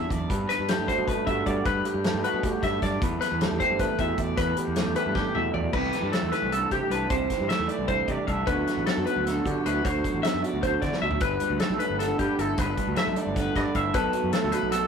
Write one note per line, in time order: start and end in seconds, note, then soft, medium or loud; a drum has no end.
0.00 0.29 E3 medium
0.00 0.69 B3 medium
0.00 0.88 D4 medium
0.00 0.29 G4 medium
0.00 0.11 E5 medium
0.09 0.25 E2 medium
0.09 0.29 F#2 medium
0.09 0.30 D5 medium
0.09 kick medium
0.09 closed hi-hat medium
0.29 1.63 G2 medium
0.29 0.45 G2 medium
0.29 1.65 B4 medium
0.29 kick loud
0.29 closed hi-hat medium
0.49 0.68 B4 medium
0.49 snare soft
0.49 closed hi-hat medium
0.59 0.74 G2 medium
0.68 1.08 A3 medium
0.68 0.88 G4 medium
0.68 snare loud
0.68 closed hi-hat medium
0.78 0.86 G2 medium
0.87 2.07 G3 medium
0.87 1.27 F#4 soft
0.87 1.07 C5 medium
0.87 kick medium
0.87 closed hi-hat medium
0.98 1.12 B2 medium
1.07 2.04 A3 medium
1.07 1.26 B4 medium
1.07 kick medium
1.07 closed hi-hat medium
1.26 1.42 G2 medium
1.26 1.63 D3 medium
1.26 1.68 F#4 medium
1.26 1.46 E5 medium
1.26 kick medium
1.26 closed hi-hat medium
1.46 1.61 G2 medium
1.46 1.66 D5 medium
1.46 kick medium
1.46 closed hi-hat medium
1.65 2.43 G2 medium
1.65 1.80 G2 medium
1.65 3.03 B4 medium
1.65 1.85 B4 loud
1.65 kick loud
1.65 closed hi-hat medium
1.85 2.24 G4 medium
1.85 closed hi-hat medium
1.94 2.09 G2 medium
2.04 3.41 A3 medium
2.04 snare loud
2.04 closed hi-hat medium
2.14 2.21 G2 medium
2.24 3.44 G3 medium
2.24 3.05 F#4 medium
2.24 2.44 B4 medium
2.24 closed hi-hat medium
2.33 2.48 B2 medium
2.43 2.63 A2 medium
2.43 2.63 G4 medium
2.43 kick loud
2.43 closed hi-hat medium
2.63 2.78 G2 medium
2.63 2.82 G2 medium
2.63 2.82 E5 medium
2.63 kick medium
2.63 snare soft
2.63 closed hi-hat medium
2.82 3.02 F#2 medium
2.82 2.97 G2 medium
2.82 3.02 D5 medium
2.82 kick medium
2.82 snare soft
2.82 closed hi-hat medium
3.02 3.16 E2 medium
3.02 4.37 E2 medium
3.02 4.36 B4 medium
3.02 kick loud
3.02 closed hi-hat medium
3.21 3.42 B4 medium
3.21 snare soft
3.21 closed hi-hat medium
3.32 3.46 E2 medium
3.41 3.80 A3 medium
3.41 3.60 G4 medium
3.41 snare loud
3.41 closed hi-hat medium
3.52 3.58 E2 medium
3.59 4.96 E3 medium
3.59 3.99 G4 medium
3.59 3.79 C5 medium
3.59 kick medium
3.59 closed hi-hat medium
3.70 3.85 G2 medium
3.79 4.76 A3 medium
3.79 3.99 B4 medium
3.79 kick medium
3.79 closed hi-hat medium
3.98 4.14 E2 medium
3.98 4.38 B2 medium
3.98 4.80 G4 medium
3.98 4.19 E5 medium
3.98 kick medium
3.98 closed hi-hat medium
4.18 4.33 E2 medium
4.18 4.38 D5 medium
4.18 kick medium
4.18 closed hi-hat medium
4.37 4.53 E2 medium
4.37 5.74 E2 medium
4.37 4.58 B4 medium
4.37 5.72 B4 soft
4.37 kick loud
4.37 closed hi-hat medium
4.57 4.96 G4 medium
4.57 closed hi-hat medium
4.68 4.82 E2 medium
4.76 5.15 A3 medium
4.76 snare medium
4.76 closed hi-hat medium
4.87 4.94 E2 medium
4.96 5.94 E3 medium
4.96 5.34 G4 medium
4.96 5.16 B4 medium
4.96 closed hi-hat medium
5.06 5.21 G2 medium
5.15 6.15 A3 medium
5.15 5.35 G4 medium
5.15 kick medium
5.15 snare soft
5.35 5.50 E2 medium
5.35 5.74 B2 medium
5.35 5.72 G4 soft
5.35 5.54 E5 medium
5.35 mid tom medium
5.54 5.69 E2 medium
5.54 5.73 D5 medium
5.54 floor tom medium
5.73 5.89 C2 medium
5.73 5.94 C3 medium
5.73 6.72 G4 medium
5.73 6.13 B4 medium
5.73 kick loud
5.73 crash medium
5.93 6.34 E3 medium
5.93 snare soft
5.93 closed hi-hat medium
6.02 6.10 G2 medium
6.13 7.51 A3 medium
6.13 6.32 A4 medium
6.13 snare loud
6.13 closed hi-hat medium
6.23 6.30 E2 medium
6.32 7.31 E3 medium
6.32 6.52 B4 medium
6.32 snare soft
6.32 closed hi-hat medium
6.42 6.64 C2 medium
6.52 7.09 G2 medium
6.52 6.72 A4 medium
6.52 closed hi-hat medium
6.71 6.79 C3 medium
6.71 6.91 G4 medium
6.71 7.09 G4 medium
6.71 kick medium
6.71 closed hi-hat medium
6.90 7.05 C2 medium
6.90 7.14 D4 soft
6.90 7.10 B4 medium
6.90 closed hi-hat medium
7.10 7.25 C2 medium
7.10 7.30 C3 medium
7.10 8.07 G4 medium
7.10 7.49 C5 medium
7.10 kick loud
7.10 closed hi-hat medium
7.30 7.70 E3 medium
7.30 kick medium
7.30 snare soft
7.30 closed hi-hat medium
7.40 7.47 G2 medium
7.49 8.49 A3 medium
7.49 7.68 E5 medium
7.49 snare loud
7.49 closed hi-hat medium
7.59 7.67 E2 medium
7.68 8.48 E3 medium
7.68 7.88 D5 medium
7.68 closed hi-hat medium
7.79 8.01 C2 medium
7.88 8.45 G2 medium
7.88 8.08 C5 medium
7.88 kick medium
7.88 closed hi-hat medium
8.08 8.16 C3 medium
8.08 8.45 G4 medium
8.08 8.27 D5 medium
8.08 kick medium
8.08 closed hi-hat medium
8.27 8.43 C2 medium
8.27 8.49 D4 soft
8.27 8.47 E5 medium
8.27 kick medium
8.27 closed hi-hat medium
8.47 8.62 D2 medium
8.47 9.26 D3 medium
8.47 8.68 F#3 medium
8.47 8.88 B3 medium
8.47 9.67 E4 soft
8.47 9.46 F#4 medium
8.47 8.86 B4 medium
8.47 kick loud
8.47 closed hi-hat medium
8.67 9.06 F#3 medium
8.67 snare soft
8.67 closed hi-hat medium
8.77 8.85 A1 loud
8.86 10.25 B3 medium
8.86 9.05 A4 medium
8.86 snare loud
8.86 closed hi-hat medium
8.97 9.04 F#2 loud
9.06 9.82 F#3 medium
9.06 9.25 B4 medium
9.06 closed hi-hat medium
9.16 9.39 D2 medium
9.25 9.83 D3 medium
9.25 9.46 A4 medium
9.25 snare soft
9.25 closed hi-hat medium
9.46 9.53 D3 loud
9.46 9.85 F#4 medium
9.46 9.66 G4 medium
9.46 kick medium
9.46 closed hi-hat medium
9.66 9.80 D2 medium
9.66 9.88 E4 medium
9.66 9.85 B4 medium
9.66 closed hi-hat medium
9.85 10.00 D2 medium
9.85 10.63 D3 medium
9.85 11.22 F#4 medium
9.85 10.24 C5 medium
9.85 kick loud
9.85 closed hi-hat medium
10.04 10.43 F#3 medium
10.04 kick medium
10.04 closed hi-hat medium
10.14 10.22 A1 medium
10.23 11.63 B3 medium
10.23 10.43 E5 medium
10.23 snare loud
10.23 closed hi-hat medium
10.34 10.41 F#2 medium
10.43 10.83 F#3 medium
10.43 10.63 D5 medium
10.43 closed hi-hat medium
10.53 10.76 D2 medium
10.63 10.83 D3 medium
10.63 10.83 C5 medium
10.63 kick medium
10.63 closed hi-hat medium
10.82 10.90 D3 medium
10.82 11.02 E3 medium
10.82 11.01 D5 medium
10.82 kick medium
10.82 snare soft
10.82 closed hi-hat medium
10.93 snare soft
11.02 11.17 D2 medium
11.02 11.22 F#3 medium
11.02 11.21 E5 medium
11.11 floor tom medium
11.20 11.36 G1 medium
11.20 12.56 G2 medium
11.20 11.60 B4 medium
11.20 12.22 B4 medium
11.20 kick loud
11.20 closed hi-hat medium
11.40 11.81 G3 medium
11.40 closed hi-hat medium
11.50 11.58 D2 loud
11.60 12.98 A3 medium
11.60 11.79 A4 medium
11.60 snare loud
11.60 closed hi-hat medium
11.70 11.78 B1 medium
11.79 12.57 G3 medium
11.79 11.99 B4 medium
11.79 closed hi-hat medium
11.90 12.12 G1 medium
11.99 12.57 D3 medium
11.99 12.19 A4 medium
11.99 snare soft
11.99 closed hi-hat medium
12.19 12.27 G2 loud
12.19 12.39 G4 medium
12.19 12.59 B4 medium
12.19 kick medium
12.19 closed hi-hat medium
12.39 12.53 G1 medium
12.39 12.57 E4 medium
12.39 12.59 A4 medium
12.39 closed hi-hat medium
12.58 12.73 G1 medium
12.58 13.92 G2 medium
12.58 12.97 B4 medium
12.58 13.55 B4 medium
12.58 kick loud
12.58 closed hi-hat medium
12.77 13.16 G3 medium
12.77 kick medium
12.77 closed hi-hat medium
12.87 12.95 D2 loud
12.96 14.33 A3 medium
12.96 13.17 E5 medium
12.96 snare loud
12.96 closed hi-hat medium
13.07 13.14 B1 medium
13.16 13.92 G3 medium
13.16 13.37 D5 medium
13.16 closed hi-hat medium
13.26 13.48 G1 medium
13.35 13.92 D3 medium
13.35 13.56 B4 medium
13.35 kick loud
13.35 snare soft
13.35 closed hi-hat medium
13.56 13.63 G2 loud
13.56 13.94 B4 medium
13.56 13.76 D5 medium
13.56 kick medium
13.56 snare soft
13.56 closed hi-hat medium
13.75 13.90 G1 medium
13.75 13.92 E4 medium
13.75 13.95 E5 medium
13.75 kick medium
13.75 closed hi-hat medium
13.94 14.09 B1 medium
13.94 14.71 B2 medium
13.94 14.87 A4 medium
13.94 14.33 B4 loud
13.94 kick loud
13.94 closed hi-hat medium
14.13 14.51 F#3 medium
14.13 closed hi-hat medium
14.23 14.31 F#2 medium
14.33 14.87 A3 medium
14.33 14.52 A4 medium
14.33 snare loud
14.33 closed hi-hat medium
14.44 14.51 D2 medium
14.52 14.87 F#3 medium
14.52 14.71 B4 medium
14.52 closed hi-hat medium
14.63 14.85 B1 medium
14.71 14.87 F#2 medium
14.71 14.87 A4 medium
14.71 snare soft
14.71 closed hi-hat medium